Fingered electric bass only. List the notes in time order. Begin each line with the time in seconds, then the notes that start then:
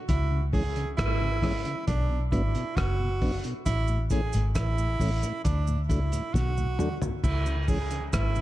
0.09 C#2
0.99 G#1
1.88 B1
2.33 G#1
2.77 F#1
3.67 A1
4.34 G#1
4.56 A1
5.00 A1
5.46 D2
5.90 C#2
6.34 B1
7.24 C#2
8.13 G#1